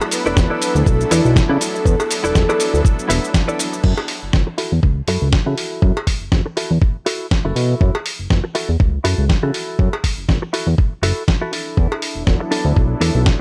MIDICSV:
0, 0, Header, 1, 8, 480
1, 0, Start_track
1, 0, Key_signature, 3, "minor"
1, 0, Tempo, 495868
1, 1797, Time_signature, 4, 2, 24, 8
1, 12980, End_track
2, 0, Start_track
2, 0, Title_t, "String section"
2, 0, Program_c, 0, 48
2, 0, Note_on_c, 0, 57, 82
2, 0, Note_on_c, 0, 62, 77
2, 0, Note_on_c, 0, 83, 75
2, 0, Note_on_c, 0, 88, 95
2, 3677, Note_off_c, 0, 83, 0
2, 3679, Note_off_c, 0, 62, 0
2, 3679, Note_off_c, 0, 88, 0
2, 3680, Note_off_c, 0, 57, 0
2, 12980, End_track
3, 0, Start_track
3, 0, Title_t, "Clean electric guitar"
3, 0, Program_c, 1, 27
3, 251, Note_on_c, 1, 64, 123
3, 256, Note_on_c, 1, 69, 92
3, 256, Note_on_c, 1, 71, 105
3, 261, Note_on_c, 1, 74, 107
3, 357, Note_off_c, 1, 64, 0
3, 358, Note_off_c, 1, 69, 0
3, 360, Note_off_c, 1, 71, 0
3, 360, Note_off_c, 1, 74, 0
3, 486, Note_on_c, 1, 64, 92
3, 490, Note_on_c, 1, 71, 77
3, 493, Note_on_c, 1, 69, 79
3, 496, Note_on_c, 1, 74, 90
3, 782, Note_off_c, 1, 64, 0
3, 783, Note_off_c, 1, 69, 0
3, 784, Note_off_c, 1, 71, 0
3, 785, Note_off_c, 1, 74, 0
3, 1075, Note_on_c, 1, 64, 110
3, 1080, Note_on_c, 1, 71, 93
3, 1081, Note_on_c, 1, 69, 97
3, 1084, Note_on_c, 1, 74, 111
3, 1263, Note_off_c, 1, 64, 0
3, 1264, Note_off_c, 1, 69, 0
3, 1265, Note_off_c, 1, 71, 0
3, 1266, Note_off_c, 1, 74, 0
3, 1446, Note_on_c, 1, 64, 84
3, 1452, Note_on_c, 1, 69, 72
3, 1452, Note_on_c, 1, 71, 75
3, 1457, Note_on_c, 1, 74, 90
3, 1555, Note_off_c, 1, 64, 0
3, 1556, Note_off_c, 1, 69, 0
3, 1558, Note_off_c, 1, 71, 0
3, 1558, Note_off_c, 1, 74, 0
3, 2166, Note_on_c, 1, 64, 120
3, 2171, Note_on_c, 1, 69, 99
3, 2172, Note_on_c, 1, 71, 114
3, 2176, Note_on_c, 1, 74, 107
3, 2275, Note_off_c, 1, 64, 0
3, 2276, Note_off_c, 1, 69, 0
3, 2278, Note_off_c, 1, 71, 0
3, 2278, Note_off_c, 1, 74, 0
3, 2407, Note_on_c, 1, 71, 74
3, 2408, Note_on_c, 1, 69, 76
3, 2412, Note_on_c, 1, 64, 85
3, 2412, Note_on_c, 1, 74, 101
3, 2701, Note_off_c, 1, 64, 0
3, 2701, Note_off_c, 1, 69, 0
3, 2703, Note_off_c, 1, 71, 0
3, 2704, Note_off_c, 1, 74, 0
3, 2987, Note_on_c, 1, 64, 116
3, 2994, Note_on_c, 1, 71, 109
3, 2995, Note_on_c, 1, 69, 96
3, 2998, Note_on_c, 1, 76, 112
3, 3179, Note_off_c, 1, 64, 0
3, 3181, Note_off_c, 1, 69, 0
3, 3183, Note_off_c, 1, 71, 0
3, 3183, Note_off_c, 1, 76, 0
3, 3367, Note_on_c, 1, 71, 78
3, 3372, Note_on_c, 1, 69, 78
3, 3373, Note_on_c, 1, 74, 94
3, 3374, Note_on_c, 1, 64, 80
3, 3475, Note_off_c, 1, 64, 0
3, 3476, Note_off_c, 1, 69, 0
3, 3477, Note_off_c, 1, 71, 0
3, 3478, Note_off_c, 1, 74, 0
3, 4431, Note_on_c, 1, 64, 108
3, 4434, Note_on_c, 1, 66, 100
3, 4441, Note_on_c, 1, 69, 111
3, 4568, Note_off_c, 1, 64, 0
3, 4570, Note_off_c, 1, 66, 0
3, 4571, Note_off_c, 1, 69, 0
3, 4919, Note_on_c, 1, 66, 105
3, 4920, Note_on_c, 1, 64, 101
3, 4924, Note_on_c, 1, 69, 124
3, 5104, Note_off_c, 1, 64, 0
3, 5106, Note_off_c, 1, 66, 0
3, 5107, Note_off_c, 1, 69, 0
3, 5287, Note_on_c, 1, 66, 78
3, 5291, Note_on_c, 1, 64, 77
3, 5293, Note_on_c, 1, 69, 92
3, 5769, Note_off_c, 1, 64, 0
3, 5770, Note_off_c, 1, 66, 0
3, 5772, Note_off_c, 1, 69, 0
3, 6358, Note_on_c, 1, 66, 100
3, 6360, Note_on_c, 1, 64, 97
3, 6363, Note_on_c, 1, 69, 121
3, 6491, Note_off_c, 1, 64, 0
3, 6492, Note_off_c, 1, 66, 0
3, 6494, Note_off_c, 1, 69, 0
3, 6835, Note_on_c, 1, 64, 95
3, 6835, Note_on_c, 1, 66, 105
3, 6838, Note_on_c, 1, 69, 124
3, 7022, Note_off_c, 1, 64, 0
3, 7023, Note_off_c, 1, 66, 0
3, 7024, Note_off_c, 1, 69, 0
3, 7210, Note_on_c, 1, 64, 85
3, 7214, Note_on_c, 1, 66, 77
3, 7219, Note_on_c, 1, 69, 81
3, 7690, Note_off_c, 1, 64, 0
3, 7693, Note_off_c, 1, 66, 0
3, 7693, Note_off_c, 1, 69, 0
3, 8274, Note_on_c, 1, 64, 100
3, 8275, Note_on_c, 1, 66, 103
3, 8279, Note_on_c, 1, 69, 122
3, 8409, Note_off_c, 1, 64, 0
3, 8410, Note_off_c, 1, 66, 0
3, 8412, Note_off_c, 1, 69, 0
3, 8752, Note_on_c, 1, 64, 110
3, 8755, Note_on_c, 1, 66, 101
3, 8761, Note_on_c, 1, 69, 112
3, 8941, Note_off_c, 1, 64, 0
3, 8943, Note_off_c, 1, 66, 0
3, 8945, Note_off_c, 1, 69, 0
3, 9127, Note_on_c, 1, 66, 77
3, 9128, Note_on_c, 1, 64, 71
3, 9130, Note_on_c, 1, 69, 92
3, 9608, Note_off_c, 1, 64, 0
3, 9609, Note_off_c, 1, 66, 0
3, 9610, Note_off_c, 1, 69, 0
3, 10194, Note_on_c, 1, 64, 111
3, 10197, Note_on_c, 1, 66, 100
3, 10204, Note_on_c, 1, 69, 112
3, 10329, Note_off_c, 1, 64, 0
3, 10331, Note_off_c, 1, 66, 0
3, 10333, Note_off_c, 1, 69, 0
3, 10675, Note_on_c, 1, 66, 95
3, 10677, Note_on_c, 1, 64, 95
3, 10681, Note_on_c, 1, 69, 118
3, 10862, Note_off_c, 1, 64, 0
3, 10863, Note_off_c, 1, 66, 0
3, 10866, Note_off_c, 1, 69, 0
3, 11049, Note_on_c, 1, 64, 77
3, 11049, Note_on_c, 1, 66, 82
3, 11053, Note_on_c, 1, 69, 92
3, 11145, Note_off_c, 1, 64, 0
3, 11148, Note_off_c, 1, 69, 0
3, 11153, Note_on_c, 1, 62, 83
3, 11156, Note_off_c, 1, 66, 0
3, 11160, Note_on_c, 1, 64, 72
3, 11160, Note_on_c, 1, 69, 100
3, 11833, Note_off_c, 1, 62, 0
3, 11834, Note_off_c, 1, 64, 0
3, 11836, Note_off_c, 1, 69, 0
3, 12111, Note_on_c, 1, 62, 109
3, 12115, Note_on_c, 1, 69, 124
3, 12117, Note_on_c, 1, 64, 85
3, 12247, Note_off_c, 1, 62, 0
3, 12250, Note_off_c, 1, 64, 0
3, 12251, Note_off_c, 1, 69, 0
3, 12593, Note_on_c, 1, 62, 114
3, 12600, Note_on_c, 1, 69, 127
3, 12601, Note_on_c, 1, 64, 88
3, 12782, Note_off_c, 1, 62, 0
3, 12784, Note_off_c, 1, 64, 0
3, 12785, Note_off_c, 1, 69, 0
3, 12980, End_track
4, 0, Start_track
4, 0, Title_t, "Soft synth lead"
4, 0, Program_c, 2, 80
4, 124, Note_on_c, 2, 71, 123
4, 852, Note_on_c, 2, 69, 116
4, 867, Note_off_c, 2, 71, 0
4, 1084, Note_off_c, 2, 69, 0
4, 1089, Note_on_c, 2, 64, 108
4, 1567, Note_on_c, 2, 69, 103
4, 1581, Note_off_c, 2, 64, 0
4, 3242, Note_off_c, 2, 69, 0
4, 12980, End_track
5, 0, Start_track
5, 0, Title_t, "Analog synth pad"
5, 0, Program_c, 3, 89
5, 0, Note_on_c, 3, 54, 81
5, 0, Note_on_c, 3, 59, 72
5, 0, Note_on_c, 3, 62, 77
5, 0, Note_on_c, 3, 64, 77
5, 0, Note_on_c, 3, 69, 88
5, 212, Note_off_c, 3, 54, 0
5, 214, Note_off_c, 3, 59, 0
5, 218, Note_off_c, 3, 62, 0
5, 219, Note_off_c, 3, 64, 0
5, 222, Note_off_c, 3, 69, 0
5, 249, Note_on_c, 3, 54, 91
5, 252, Note_on_c, 3, 59, 81
5, 255, Note_on_c, 3, 64, 78
5, 256, Note_on_c, 3, 62, 82
5, 259, Note_on_c, 3, 69, 99
5, 570, Note_off_c, 3, 54, 0
5, 572, Note_off_c, 3, 59, 0
5, 573, Note_off_c, 3, 64, 0
5, 574, Note_off_c, 3, 62, 0
5, 575, Note_off_c, 3, 69, 0
5, 588, Note_on_c, 3, 54, 84
5, 594, Note_on_c, 3, 59, 73
5, 598, Note_on_c, 3, 62, 78
5, 603, Note_on_c, 3, 64, 74
5, 608, Note_on_c, 3, 69, 92
5, 2134, Note_off_c, 3, 54, 0
5, 2137, Note_off_c, 3, 59, 0
5, 2139, Note_off_c, 3, 62, 0
5, 2142, Note_off_c, 3, 64, 0
5, 2144, Note_off_c, 3, 69, 0
5, 2162, Note_on_c, 3, 54, 87
5, 2167, Note_on_c, 3, 59, 85
5, 2168, Note_on_c, 3, 62, 82
5, 2172, Note_on_c, 3, 64, 79
5, 2174, Note_on_c, 3, 69, 97
5, 2487, Note_off_c, 3, 54, 0
5, 2489, Note_off_c, 3, 59, 0
5, 2490, Note_off_c, 3, 62, 0
5, 2492, Note_off_c, 3, 64, 0
5, 2493, Note_off_c, 3, 69, 0
5, 2507, Note_on_c, 3, 54, 80
5, 2512, Note_on_c, 3, 59, 77
5, 2516, Note_on_c, 3, 62, 75
5, 2521, Note_on_c, 3, 64, 72
5, 2527, Note_on_c, 3, 69, 93
5, 3699, Note_off_c, 3, 54, 0
5, 3701, Note_off_c, 3, 59, 0
5, 3704, Note_off_c, 3, 62, 0
5, 3706, Note_off_c, 3, 64, 0
5, 3709, Note_off_c, 3, 69, 0
5, 11765, Note_on_c, 3, 54, 87
5, 11766, Note_on_c, 3, 59, 77
5, 11768, Note_on_c, 3, 62, 81
5, 11772, Note_on_c, 3, 64, 76
5, 11775, Note_on_c, 3, 69, 99
5, 12088, Note_off_c, 3, 54, 0
5, 12089, Note_off_c, 3, 59, 0
5, 12090, Note_off_c, 3, 62, 0
5, 12092, Note_off_c, 3, 64, 0
5, 12093, Note_off_c, 3, 69, 0
5, 12111, Note_on_c, 3, 54, 81
5, 12116, Note_on_c, 3, 59, 70
5, 12121, Note_on_c, 3, 62, 73
5, 12127, Note_on_c, 3, 64, 73
5, 12131, Note_on_c, 3, 69, 86
5, 12980, Note_off_c, 3, 54, 0
5, 12980, Note_off_c, 3, 59, 0
5, 12980, Note_off_c, 3, 62, 0
5, 12980, Note_off_c, 3, 64, 0
5, 12980, Note_off_c, 3, 69, 0
5, 12980, End_track
6, 0, Start_track
6, 0, Title_t, "Analog synth bass"
6, 0, Program_c, 4, 38
6, 249, Note_on_c, 4, 28, 46
6, 335, Note_off_c, 4, 28, 0
6, 354, Note_on_c, 4, 28, 93
6, 454, Note_off_c, 4, 28, 0
6, 727, Note_on_c, 4, 38, 103
6, 807, Note_off_c, 4, 38, 0
6, 835, Note_on_c, 4, 35, 90
6, 1020, Note_off_c, 4, 35, 0
6, 1077, Note_on_c, 4, 40, 79
6, 1175, Note_off_c, 4, 40, 0
6, 1209, Note_on_c, 4, 35, 94
6, 1380, Note_off_c, 4, 35, 0
6, 1446, Note_on_c, 4, 49, 94
6, 1527, Note_off_c, 4, 49, 0
6, 1794, Note_on_c, 4, 40, 100
6, 1894, Note_off_c, 4, 40, 0
6, 2170, Note_on_c, 4, 28, 45
6, 2255, Note_off_c, 4, 28, 0
6, 2275, Note_on_c, 4, 28, 88
6, 2375, Note_off_c, 4, 28, 0
6, 2650, Note_on_c, 4, 38, 97
6, 2729, Note_off_c, 4, 38, 0
6, 2997, Note_on_c, 4, 28, 89
6, 3095, Note_off_c, 4, 28, 0
6, 3714, Note_on_c, 4, 42, 102
6, 3814, Note_off_c, 4, 42, 0
6, 4093, Note_on_c, 4, 30, 44
6, 4177, Note_off_c, 4, 30, 0
6, 4194, Note_on_c, 4, 30, 86
6, 4294, Note_off_c, 4, 30, 0
6, 4570, Note_on_c, 4, 40, 100
6, 4648, Note_off_c, 4, 40, 0
6, 4674, Note_on_c, 4, 37, 88
6, 4860, Note_off_c, 4, 37, 0
6, 4913, Note_on_c, 4, 42, 73
6, 5014, Note_off_c, 4, 42, 0
6, 5049, Note_on_c, 4, 37, 89
6, 5220, Note_off_c, 4, 37, 0
6, 5291, Note_on_c, 4, 49, 90
6, 5369, Note_off_c, 4, 49, 0
6, 5635, Note_on_c, 4, 42, 98
6, 5735, Note_off_c, 4, 42, 0
6, 6010, Note_on_c, 4, 30, 45
6, 6095, Note_off_c, 4, 30, 0
6, 6116, Note_on_c, 4, 30, 89
6, 6215, Note_off_c, 4, 30, 0
6, 6492, Note_on_c, 4, 40, 96
6, 6570, Note_off_c, 4, 40, 0
6, 7211, Note_on_c, 4, 30, 92
6, 7289, Note_off_c, 4, 30, 0
6, 7315, Note_on_c, 4, 47, 97
6, 7500, Note_off_c, 4, 47, 0
6, 7557, Note_on_c, 4, 42, 97
6, 7656, Note_off_c, 4, 42, 0
6, 7930, Note_on_c, 4, 30, 45
6, 8015, Note_off_c, 4, 30, 0
6, 8038, Note_on_c, 4, 30, 88
6, 8136, Note_off_c, 4, 30, 0
6, 8411, Note_on_c, 4, 40, 97
6, 8489, Note_off_c, 4, 40, 0
6, 8518, Note_on_c, 4, 37, 88
6, 8701, Note_off_c, 4, 37, 0
6, 8757, Note_on_c, 4, 42, 76
6, 8855, Note_off_c, 4, 42, 0
6, 8889, Note_on_c, 4, 37, 88
6, 9059, Note_off_c, 4, 37, 0
6, 9128, Note_on_c, 4, 49, 90
6, 9208, Note_off_c, 4, 49, 0
6, 9475, Note_on_c, 4, 42, 99
6, 9574, Note_off_c, 4, 42, 0
6, 9848, Note_on_c, 4, 30, 45
6, 9934, Note_off_c, 4, 30, 0
6, 9956, Note_on_c, 4, 30, 88
6, 10055, Note_off_c, 4, 30, 0
6, 10326, Note_on_c, 4, 40, 97
6, 10406, Note_off_c, 4, 40, 0
6, 10671, Note_on_c, 4, 30, 80
6, 10772, Note_off_c, 4, 30, 0
6, 11395, Note_on_c, 4, 40, 99
6, 11495, Note_off_c, 4, 40, 0
6, 11764, Note_on_c, 4, 28, 44
6, 11852, Note_off_c, 4, 28, 0
6, 11876, Note_on_c, 4, 28, 89
6, 11975, Note_off_c, 4, 28, 0
6, 12243, Note_on_c, 4, 38, 97
6, 12325, Note_off_c, 4, 38, 0
6, 12355, Note_on_c, 4, 35, 88
6, 12540, Note_off_c, 4, 35, 0
6, 12591, Note_on_c, 4, 40, 76
6, 12692, Note_off_c, 4, 40, 0
6, 12726, Note_on_c, 4, 35, 92
6, 12898, Note_off_c, 4, 35, 0
6, 12980, End_track
7, 0, Start_track
7, 0, Title_t, "Muted clean electric guitar strokes"
7, 1691, Note_on_c, 9, 29, 33
7, 1788, Note_off_c, 9, 29, 0
7, 3606, Note_on_c, 9, 29, 32
7, 3703, Note_off_c, 9, 29, 0
7, 4326, Note_on_c, 9, 29, 83
7, 4423, Note_off_c, 9, 29, 0
7, 4677, Note_on_c, 9, 29, 32
7, 4773, Note_off_c, 9, 29, 0
7, 6250, Note_on_c, 9, 29, 83
7, 6347, Note_off_c, 9, 29, 0
7, 6598, Note_on_c, 9, 29, 32
7, 6695, Note_off_c, 9, 29, 0
7, 8167, Note_on_c, 9, 29, 83
7, 8264, Note_off_c, 9, 29, 0
7, 8515, Note_on_c, 9, 29, 34
7, 8611, Note_off_c, 9, 29, 0
7, 10089, Note_on_c, 9, 29, 85
7, 10186, Note_off_c, 9, 29, 0
7, 10433, Note_on_c, 9, 29, 34
7, 10530, Note_off_c, 9, 29, 0
7, 12007, Note_on_c, 9, 29, 87
7, 12104, Note_off_c, 9, 29, 0
7, 12355, Note_on_c, 9, 29, 33
7, 12451, Note_off_c, 9, 29, 0
7, 12980, End_track
8, 0, Start_track
8, 0, Title_t, "Drums"
8, 13, Note_on_c, 9, 82, 33
8, 14, Note_on_c, 9, 56, 62
8, 109, Note_off_c, 9, 82, 0
8, 111, Note_off_c, 9, 56, 0
8, 111, Note_on_c, 9, 46, 104
8, 115, Note_on_c, 9, 82, 85
8, 208, Note_off_c, 9, 46, 0
8, 212, Note_off_c, 9, 82, 0
8, 254, Note_on_c, 9, 82, 35
8, 350, Note_off_c, 9, 82, 0
8, 356, Note_on_c, 9, 36, 117
8, 356, Note_on_c, 9, 38, 122
8, 359, Note_on_c, 9, 82, 47
8, 453, Note_off_c, 9, 36, 0
8, 453, Note_off_c, 9, 38, 0
8, 456, Note_off_c, 9, 82, 0
8, 597, Note_on_c, 9, 46, 92
8, 601, Note_on_c, 9, 82, 82
8, 693, Note_off_c, 9, 46, 0
8, 698, Note_off_c, 9, 82, 0
8, 735, Note_on_c, 9, 82, 33
8, 832, Note_off_c, 9, 82, 0
8, 837, Note_on_c, 9, 36, 114
8, 839, Note_on_c, 9, 82, 47
8, 934, Note_off_c, 9, 36, 0
8, 936, Note_off_c, 9, 82, 0
8, 976, Note_on_c, 9, 82, 32
8, 1073, Note_off_c, 9, 82, 0
8, 1076, Note_on_c, 9, 46, 105
8, 1080, Note_on_c, 9, 82, 83
8, 1173, Note_off_c, 9, 46, 0
8, 1177, Note_off_c, 9, 82, 0
8, 1216, Note_on_c, 9, 82, 35
8, 1313, Note_off_c, 9, 82, 0
8, 1317, Note_on_c, 9, 36, 125
8, 1322, Note_on_c, 9, 38, 111
8, 1325, Note_on_c, 9, 82, 45
8, 1413, Note_off_c, 9, 36, 0
8, 1419, Note_off_c, 9, 38, 0
8, 1422, Note_off_c, 9, 82, 0
8, 1558, Note_on_c, 9, 46, 88
8, 1562, Note_on_c, 9, 82, 79
8, 1655, Note_off_c, 9, 46, 0
8, 1659, Note_off_c, 9, 82, 0
8, 1699, Note_on_c, 9, 82, 37
8, 1796, Note_off_c, 9, 82, 0
8, 1797, Note_on_c, 9, 36, 118
8, 1802, Note_on_c, 9, 82, 47
8, 1894, Note_off_c, 9, 36, 0
8, 1899, Note_off_c, 9, 82, 0
8, 1934, Note_on_c, 9, 56, 66
8, 1937, Note_on_c, 9, 82, 33
8, 2031, Note_off_c, 9, 56, 0
8, 2034, Note_off_c, 9, 82, 0
8, 2038, Note_on_c, 9, 46, 105
8, 2043, Note_on_c, 9, 82, 89
8, 2135, Note_off_c, 9, 46, 0
8, 2139, Note_off_c, 9, 82, 0
8, 2176, Note_on_c, 9, 82, 36
8, 2273, Note_off_c, 9, 82, 0
8, 2277, Note_on_c, 9, 36, 121
8, 2279, Note_on_c, 9, 38, 120
8, 2283, Note_on_c, 9, 82, 46
8, 2374, Note_off_c, 9, 36, 0
8, 2376, Note_off_c, 9, 38, 0
8, 2379, Note_off_c, 9, 82, 0
8, 2416, Note_on_c, 9, 82, 34
8, 2417, Note_on_c, 9, 56, 56
8, 2513, Note_off_c, 9, 82, 0
8, 2514, Note_off_c, 9, 56, 0
8, 2515, Note_on_c, 9, 46, 90
8, 2519, Note_on_c, 9, 82, 84
8, 2611, Note_off_c, 9, 46, 0
8, 2616, Note_off_c, 9, 82, 0
8, 2659, Note_on_c, 9, 82, 34
8, 2756, Note_off_c, 9, 82, 0
8, 2756, Note_on_c, 9, 36, 119
8, 2763, Note_on_c, 9, 82, 49
8, 2853, Note_off_c, 9, 36, 0
8, 2860, Note_off_c, 9, 82, 0
8, 2897, Note_on_c, 9, 82, 33
8, 2994, Note_off_c, 9, 82, 0
8, 3000, Note_on_c, 9, 46, 106
8, 3004, Note_on_c, 9, 82, 85
8, 3097, Note_off_c, 9, 46, 0
8, 3101, Note_off_c, 9, 82, 0
8, 3140, Note_on_c, 9, 82, 36
8, 3236, Note_on_c, 9, 36, 119
8, 3237, Note_off_c, 9, 82, 0
8, 3237, Note_on_c, 9, 38, 120
8, 3241, Note_on_c, 9, 82, 46
8, 3333, Note_off_c, 9, 36, 0
8, 3334, Note_off_c, 9, 38, 0
8, 3338, Note_off_c, 9, 82, 0
8, 3376, Note_on_c, 9, 82, 35
8, 3472, Note_off_c, 9, 82, 0
8, 3478, Note_on_c, 9, 46, 88
8, 3482, Note_on_c, 9, 82, 85
8, 3575, Note_off_c, 9, 46, 0
8, 3579, Note_off_c, 9, 82, 0
8, 3615, Note_on_c, 9, 82, 37
8, 3712, Note_off_c, 9, 82, 0
8, 3713, Note_on_c, 9, 49, 91
8, 3716, Note_on_c, 9, 36, 113
8, 3810, Note_off_c, 9, 49, 0
8, 3812, Note_off_c, 9, 36, 0
8, 3848, Note_on_c, 9, 56, 64
8, 3945, Note_off_c, 9, 56, 0
8, 3951, Note_on_c, 9, 46, 102
8, 4047, Note_off_c, 9, 46, 0
8, 4194, Note_on_c, 9, 38, 115
8, 4195, Note_on_c, 9, 36, 108
8, 4290, Note_off_c, 9, 38, 0
8, 4292, Note_off_c, 9, 36, 0
8, 4435, Note_on_c, 9, 46, 88
8, 4532, Note_off_c, 9, 46, 0
8, 4676, Note_on_c, 9, 36, 108
8, 4772, Note_off_c, 9, 36, 0
8, 4913, Note_on_c, 9, 46, 98
8, 5010, Note_off_c, 9, 46, 0
8, 5155, Note_on_c, 9, 38, 113
8, 5156, Note_on_c, 9, 36, 117
8, 5252, Note_off_c, 9, 38, 0
8, 5253, Note_off_c, 9, 36, 0
8, 5397, Note_on_c, 9, 46, 89
8, 5494, Note_off_c, 9, 46, 0
8, 5637, Note_on_c, 9, 36, 122
8, 5733, Note_off_c, 9, 36, 0
8, 5777, Note_on_c, 9, 56, 60
8, 5874, Note_off_c, 9, 56, 0
8, 5876, Note_on_c, 9, 36, 60
8, 5877, Note_on_c, 9, 46, 104
8, 5973, Note_off_c, 9, 36, 0
8, 5974, Note_off_c, 9, 46, 0
8, 6116, Note_on_c, 9, 36, 117
8, 6117, Note_on_c, 9, 38, 110
8, 6213, Note_off_c, 9, 36, 0
8, 6214, Note_off_c, 9, 38, 0
8, 6359, Note_on_c, 9, 46, 92
8, 6456, Note_off_c, 9, 46, 0
8, 6598, Note_on_c, 9, 36, 122
8, 6694, Note_off_c, 9, 36, 0
8, 6838, Note_on_c, 9, 46, 106
8, 6935, Note_off_c, 9, 46, 0
8, 7079, Note_on_c, 9, 36, 121
8, 7079, Note_on_c, 9, 38, 110
8, 7175, Note_off_c, 9, 36, 0
8, 7176, Note_off_c, 9, 38, 0
8, 7320, Note_on_c, 9, 46, 88
8, 7417, Note_off_c, 9, 46, 0
8, 7559, Note_on_c, 9, 36, 118
8, 7656, Note_off_c, 9, 36, 0
8, 7695, Note_on_c, 9, 56, 61
8, 7791, Note_off_c, 9, 56, 0
8, 7799, Note_on_c, 9, 46, 106
8, 7895, Note_off_c, 9, 46, 0
8, 8038, Note_on_c, 9, 36, 124
8, 8039, Note_on_c, 9, 38, 112
8, 8135, Note_off_c, 9, 36, 0
8, 8136, Note_off_c, 9, 38, 0
8, 8277, Note_on_c, 9, 46, 95
8, 8373, Note_off_c, 9, 46, 0
8, 8518, Note_on_c, 9, 36, 120
8, 8615, Note_off_c, 9, 36, 0
8, 8758, Note_on_c, 9, 46, 104
8, 8855, Note_off_c, 9, 46, 0
8, 8997, Note_on_c, 9, 36, 121
8, 9000, Note_on_c, 9, 38, 107
8, 9094, Note_off_c, 9, 36, 0
8, 9097, Note_off_c, 9, 38, 0
8, 9237, Note_on_c, 9, 46, 90
8, 9334, Note_off_c, 9, 46, 0
8, 9478, Note_on_c, 9, 36, 123
8, 9574, Note_off_c, 9, 36, 0
8, 9614, Note_on_c, 9, 56, 62
8, 9711, Note_off_c, 9, 56, 0
8, 9717, Note_on_c, 9, 36, 60
8, 9718, Note_on_c, 9, 46, 108
8, 9814, Note_off_c, 9, 36, 0
8, 9815, Note_off_c, 9, 46, 0
8, 9958, Note_on_c, 9, 36, 123
8, 9961, Note_on_c, 9, 38, 112
8, 10054, Note_off_c, 9, 36, 0
8, 10057, Note_off_c, 9, 38, 0
8, 10200, Note_on_c, 9, 46, 92
8, 10297, Note_off_c, 9, 46, 0
8, 10438, Note_on_c, 9, 36, 117
8, 10534, Note_off_c, 9, 36, 0
8, 10678, Note_on_c, 9, 46, 109
8, 10775, Note_off_c, 9, 46, 0
8, 10918, Note_on_c, 9, 36, 121
8, 10921, Note_on_c, 9, 38, 110
8, 11015, Note_off_c, 9, 36, 0
8, 11018, Note_off_c, 9, 38, 0
8, 11160, Note_on_c, 9, 46, 93
8, 11256, Note_off_c, 9, 46, 0
8, 11397, Note_on_c, 9, 36, 116
8, 11494, Note_off_c, 9, 36, 0
8, 11537, Note_on_c, 9, 56, 62
8, 11634, Note_off_c, 9, 56, 0
8, 11637, Note_on_c, 9, 46, 102
8, 11734, Note_off_c, 9, 46, 0
8, 11877, Note_on_c, 9, 36, 116
8, 11878, Note_on_c, 9, 38, 103
8, 11974, Note_off_c, 9, 36, 0
8, 11975, Note_off_c, 9, 38, 0
8, 12116, Note_on_c, 9, 46, 88
8, 12213, Note_off_c, 9, 46, 0
8, 12357, Note_on_c, 9, 36, 116
8, 12453, Note_off_c, 9, 36, 0
8, 12598, Note_on_c, 9, 46, 100
8, 12694, Note_off_c, 9, 46, 0
8, 12837, Note_on_c, 9, 36, 117
8, 12837, Note_on_c, 9, 38, 104
8, 12934, Note_off_c, 9, 36, 0
8, 12934, Note_off_c, 9, 38, 0
8, 12980, End_track
0, 0, End_of_file